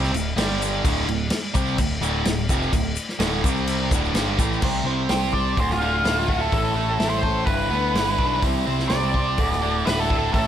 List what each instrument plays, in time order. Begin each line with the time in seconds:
Already playing: picked electric bass C2, overdriven electric guitar C3 G3 C4
0.03 snare
0.13 picked electric bass D1, overdriven electric guitar D2 A2, crash, shaker
0.36 picked electric bass G1, overdriven electric guitar G2 D3 G3, snare, crash, shaker
0.62 crash, shaker
0.83 picked electric bass D1, overdriven electric guitar D2 A2 D3, kick, crash, shaker
1.07 picked electric bass D1, overdriven electric guitar D2 A2, crash
1.30 snare, crash, shaker
1.54 picked electric bass C2, overdriven electric guitar C3 G3 C4, kick, crash, shaker
1.67 shaker
1.78 picked electric bass D1, overdriven electric guitar D2 A2, kick, crash, shaker
2.01 picked electric bass D1, overdriven electric guitar D2 A2 D3, crash, shaker
2.25 picked electric bass D1, overdriven electric guitar D2 A2, snare, crash, shaker
2.49 picked electric bass F1, overdriven electric guitar F2 C3 F3, kick, crash, shaker
2.62 shaker
2.73 picked electric bass D1, overdriven electric guitar D2 A2, kick, crash, shaker
2.96 crash, shaker
3.09 snare, shaker
3.19 picked electric bass D1, overdriven electric guitar D2 A2 D3, snare, crash, shaker
3.44 picked electric bass C2, overdriven electric guitar C3 G3 C4, kick, crash, shaker
3.57 shaker
3.67 crash, shaker
3.91 picked electric bass D1, overdriven electric guitar D2 A2 D3, kick, crash, shaker
4.05 shaker
4.14 picked electric bass G1, overdriven electric guitar G2 D3 G3, snare, crash, shaker
4.38 picked electric bass A1, overdriven electric guitar A2 E3 A3, kick, crash, shaker
4.53 shaker
4.61 picked electric bass C2, steel-string acoustic guitar C3 E3 G3 C4 E4 C5, overdriven electric guitar C3, kick, crash
4.84 picked electric bass C2, overdriven electric guitar C4, steel-string acoustic guitar C4 E4 C5
4.88 steel-string acoustic guitar G3
5.09 picked electric bass C2, steel-string acoustic guitar C3 E3 G3 C4 E4 C5, overdriven electric guitar G4, snare, open hi-hat
5.32 steel-string acoustic guitar G3 C4 E4 C5, overdriven electric guitar C5, lead electric guitar D5, kick
5.56 picked electric bass D1, overdriven electric guitar D2, steel-string acoustic guitar A3 E4 F#4 A4, lead electric guitar C5, kick, open hi-hat
5.70 lead electric guitar F4, snare
5.79 overdriven electric guitar D3, steel-string acoustic guitar E4 F#4 A4
6.03 picked electric bass D1, steel-string acoustic guitar D3 A3 E4 F#4 A4, overdriven electric guitar E4, snare, open hi-hat
6.28 overdriven electric guitar A3, steel-string acoustic guitar E4 F#4 A4, kick
6.41 lead electric guitar A4
6.51 picked electric bass A1, steel-string acoustic guitar A2 E3 A3 C#4 E4 A4, overdriven electric guitar A2, kick, open hi-hat
6.74 picked electric bass A1, overdriven electric guitar A3, steel-string acoustic guitar C#4 E4 A4
6.78 steel-string acoustic guitar A3
6.99 picked electric bass A1, steel-string acoustic guitar A2 E3 A3 C#4 E4 A4, overdriven electric guitar E4, snare, open hi-hat
7.10 lead electric guitar C5
7.23 steel-string acoustic guitar A3 C#4 E4 A4, overdriven electric guitar A4, kick
7.46 picked electric bass G1, overdriven electric guitar G2, steel-string acoustic guitar G3 D4, lead electric guitar B4, kick, open hi-hat
7.51 steel-string acoustic guitar E4 B4
7.70 picked electric bass D2, overdriven electric guitar B3, steel-string acoustic guitar E4 B4
7.75 steel-string acoustic guitar D4
7.94 picked electric bass G1, steel-string acoustic guitar G3 D4 E4, overdriven electric guitar E4, snare, open hi-hat
7.99 steel-string acoustic guitar B4
8.18 picked electric bass B1, overdriven electric guitar D4, steel-string acoustic guitar E4 B4, kick
8.23 steel-string acoustic guitar D4
8.41 picked electric bass C2, overdriven electric guitar C3, steel-string acoustic guitar C3 E3 G3 C4, kick, open hi-hat
8.46 steel-string acoustic guitar E4 C5
8.66 picked electric bass C2, overdriven electric guitar C4, steel-string acoustic guitar C4 E4 C5
8.71 steel-string acoustic guitar G3
8.79 snare
8.88 picked electric bass C2, steel-string acoustic guitar C3 E3 G3, overdriven electric guitar G4, lead electric guitar D5, snare, open hi-hat
8.93 steel-string acoustic guitar C4 E4 C5
9.14 steel-string acoustic guitar G3 C4 E4 C5, overdriven electric guitar C5, kick
9.38 picked electric bass D1, overdriven electric guitar D2, steel-string acoustic guitar A3 E4 F#4 A4, kick, open hi-hat
9.51 snare
9.61 overdriven electric guitar D3, steel-string acoustic guitar E4 F#4 A4
9.85 picked electric bass D1, steel-string acoustic guitar D3 A3 E4 F#4 A4, overdriven electric guitar E4, lead electric guitar B4, snare, open hi-hat
10.00 lead electric guitar A4
10.09 overdriven electric guitar A3, steel-string acoustic guitar F#4 A4, kick
10.13 steel-string acoustic guitar E4
10.33 picked electric bass A1, overdriven electric guitar A2, steel-string acoustic guitar A2 E3 A3 C#4 E4 A4, lead electric guitar A4, kick, open hi-hat